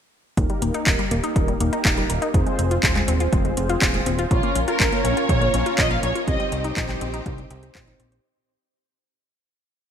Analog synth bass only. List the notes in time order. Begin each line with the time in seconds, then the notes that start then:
0.37 D#1
0.62 D#1
0.87 D#1
1.11 D#1
1.36 D#1
1.60 D#1
1.85 D#1
2.10 D#1
2.34 F1
2.59 F1
2.83 D#1
3.08 D#1
3.33 F1
3.57 F1
3.82 D#1
4.06 D#1
4.31 A#1
4.55 A#1
4.80 A#1
5.05 A#1
5.29 A#1
5.54 A#1
5.78 A#1
6.03 A#1
6.28 C2
6.52 C2
6.77 A#1
7.01 A#1
7.26 C2
7.50 C2
7.75 A#1
8.00 A#1